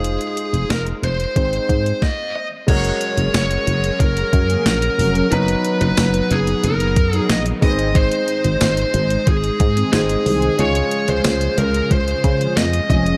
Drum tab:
CC |----------------|x---------------|----------------|----------------|
HH |xxxxxxxxxxxx----|xxxxxxxxxxxxxxox|xxxxxxxxxxxxxxox|xxxxxxxxxxxxxxox|
TB |----------------|----x-------x---|----x-------x---|----x-------x---|
SD |----o-------o---|----o-------o---|----o-------o---|----o-------o---|
BD |--------o-o-o---|o-------o-o-----|----------o---o-|o-------o-o-----|

CC |----------------|
HH |xxxxxxxxxxxxxxxx|
TB |----x-------x---|
SD |----o-------o---|
BD |--------o-o---o-|